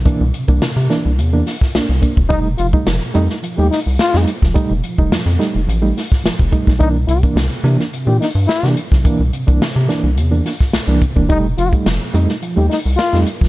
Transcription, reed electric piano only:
X:1
M:4/4
L:1/16
Q:1/4=107
K:Cmix
V:1 name="Reed electric piano"
[E,B,D] z C, [E,B,D] C, z [E,B,D] [B,D] C, [E,B,D] [B,D] z [B,D] C, [B,D] z | [G,A,_E] z F, [G,A,E] F, z [G,A,E] [A,E] F, [G,A,E] z3 [G,A,E] z F, | [G,A,_E] z F, [G,A,E] F, z [G,A,E] [A,E] F, [G,A,E] [A,E] z F, z [G,A,E] [A,E] | [E,B,D] z C, [E,B,D] C, z [E,B,D] [B,D] C, [E,B,D] [B,D] z2 [E,B,D] z C, |
[E,B,D] z C, [E,B,D] C, z [E,B,D] [B,D] C, [E,B,D] [B,D] z2 [E,B,D] C, [E,B,D] | [G,A,_E] z F, [G,A,E] F, z [G,A,E] [A,E] F, [G,A,E] [A,E] z2 [G,A,E] z F, |]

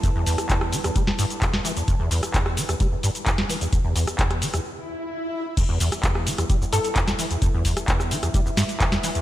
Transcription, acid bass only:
X:1
M:4/4
L:1/16
Q:1/4=130
K:Em
V:1 name="Acid bass" clef=bass
E,, E,, E,, z E,,2 E, E,, G, E,, G,, z E,, E,, E, E,, | E,, E,, E,, z E,,2 E, E,, G, E,, G,, z E,, E,, E, E,, | E,, E,, E,, z E,,2 E, E,, z8 | E,, E,, E,, z E,,2 E, E,, G, E,, G,, z E,, E,, E, E,, |
E,, E,, E,, z E,,2 E, E,, G, E,, G,, z E,, E,, E, E,, |]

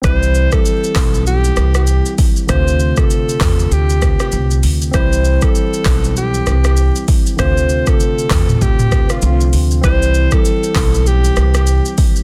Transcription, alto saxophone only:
X:1
M:4/4
L:1/16
Q:"Swing 16ths" 1/4=98
K:C
V:1 name="Alto saxophone"
c3 A4- A G3 G3 z2 | c3 A4- A G3 G3 z2 | c3 A4- A G3 G3 z2 | c3 A4- A G3 F3 z2 |
c3 A4- A G3 G3 z2 |]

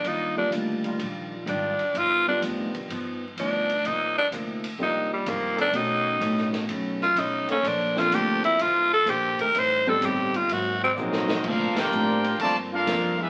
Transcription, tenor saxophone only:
X:1
M:4/4
L:1/8
Q:"Swing" 1/4=126
K:Gm
V:1 name="Tenor saxophone"
E D z4 D2 | F D z4 D2 | E D z2 E G, B, D | ^D4 z F D ^C |
D F G =E F A G B | c A G F _G C z2 | z8 |]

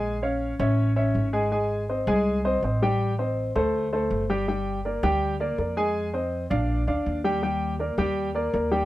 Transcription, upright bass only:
X:1
M:4/4
L:1/8
Q:1/4=163
K:Eb
V:1 name="Upright bass" clef=bass
B,,,3 =A,,,3 _A,,,2- | A,,,3 C,,3 =A,,,2- | =A,,,3 D,,3 G,,,2- | G,,,3 D,,3 F,,2- |
F,,3 B,,,2 D,, E,,2- | E,,3 E,,3 E,,2 |]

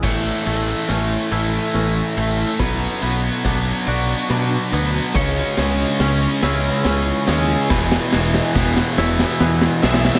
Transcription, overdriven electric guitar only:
X:1
M:6/8
L:1/8
Q:3/8=47
K:A
V:1 name="Overdriven electric guitar" clef=bass
[A,,E,A,] [A,,E,A,] [A,,E,A,] [A,,E,A,]2 [A,,E,A,] | [B,,F,B,] [B,,F,B,] [B,,F,B,] [B,,F,B,]2 [B,,F,B,] | [C,G,C] [C,G,C] [C,G,C] [C,G,C]2 [C,G,C] | [E,,B,,E,] [E,,B,,E,] [E,,B,,E,] [E,,B,,E,]2 [E,,B,,E,] |]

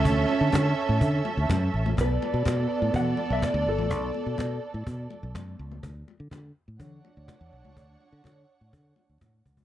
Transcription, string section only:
X:1
M:4/4
L:1/8
Q:1/4=124
K:D
V:1 name="String section"
[CAe]8 | [B,Ad]8- | [B,Ad]8 | z4 [Dcf]4- |
[Dcf]8 |]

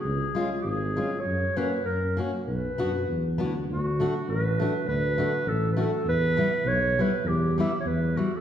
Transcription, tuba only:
X:1
M:2/4
L:1/8
Q:"Swing" 1/4=100
K:F#phr
V:1 name="Tuba" clef=bass
C,, z ^G,,,2 | F,, z F,,2 | B,,, F,, E,, D,, | [K:D] D,,2 A,,,2 |
D,,2 A,,,2 | E,,2 B,,,2 | E,,2 E,,2 |]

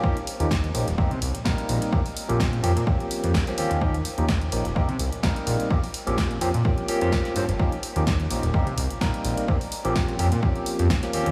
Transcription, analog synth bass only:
X:1
M:4/4
L:1/16
Q:"Swing 16ths" 1/4=127
K:Bbdor
V:1 name="Analog synth bass" clef=bass
z3 E,,3 B,,, E,,, C,, C, C,, B,,, B,,, z B,,, z | z3 B,,,3 F,, B,, z3 F,, B,,, z E,, E,,- | E,,2 z E,,3 B,,, E,,, C,, C, C,, B,,, B,,, z B,,, z | z3 B,,,3 F,, B,, z3 F,, z2 G,, G,,, |
z3 E,,3 B,,, E,,, C,, C, C,, B,,, B,,, z B,,, z | z3 B,,,3 F,, B,, z3 F,, B,,, z E,, E,, |]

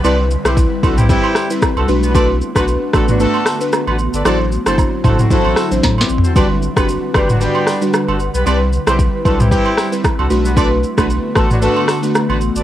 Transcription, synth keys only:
X:1
M:4/4
L:1/16
Q:"Swing 16ths" 1/4=114
K:Bphr
V:1 name="Synth keys"
[G,CEB]2 z [G,CEB]3 [G,CEB]2 [G,CEB]2 z [G,CEB] z2 [A,DFB]2 | [A,DFB]2 z [A,DFB]3 [A,DFB]2 [A,DFB]2 z [A,DFB] z4 | [F,DEc]2 z [F,DEc]3 [F,DEc]2 [F,DEc]2 z [F,DEc] z4 | [G,DFB]2 z [G,DFB]3 [G,DFB]2 [G,DFB]2 z [G,DFB] z4 |
[G,CEB]2 z [G,CEB]3 [G,CEB]2 [G,CEB]2 z [G,CEB] z2 [A,DFB]2 | [A,DFB]2 z [A,DFB]3 [A,DFB]2 [A,DFB]2 z [A,DFB] z4 |]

